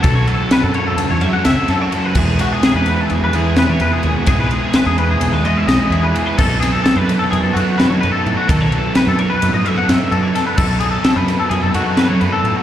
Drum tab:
CC |---------|x--------|---------|x--------|
RD |xxxxxxxxx|-xxxxxxxx|xxxxxxxxx|-xxxxxxxx|
SD |--o---oo-|--o---o--|--o---o--|-oo---o--|
BD |o--------|o--------|o--------|o--------|

CC |---------|x--------|
RD |xxxxxxxxx|-xxxxxxxx|
SD |--o---o-o|--oo--o--|
BD |o--------|o--------|